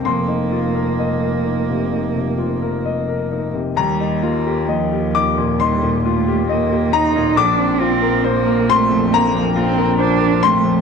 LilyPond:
<<
  \new Staff \with { instrumentName = "Grand piano" } { \time 4/4 \key bes \major \tempo 4 = 67 << { c'''2.~ c'''8 r8 | bes''4. d'''8 c'''4. bes''8 | d'''4. c'''8 bes''4. c'''8 | } \\ { f,16 ees'16 f'16 bes'16 ees''16 bes'16 ees'16 c16 ees'16 c16 f'16 bes'16 ees''16 bes'16 ees'16 c16 | ees,16 ees'16 f'16 g'16 ees''16 g'16 ees'16 bes,16 ees'16 bes,16 f'16 g'16 ees''16 g'16 ees'16 bes,16 | bes,,16 c'16 f'16 bes'16 c''16 bes'16 c'16 f,16 c'16 f,16 f'16 bes'16 c''16 bes'16 c'16 f,16 | } >> }
  \new Staff \with { instrumentName = "Cello" } { \time 4/4 \key bes \major bes1 | g8 bes8 f4 g8 a8 bes8 ees'8 | d'8 c'8 bes8 a8 bes8 c'8 d'8 a8 | }
  \new Staff \with { instrumentName = "Double bass" } { \clef bass \time 4/4 \key bes \major f,,1 | ees,1 | bes,,1 | }
>>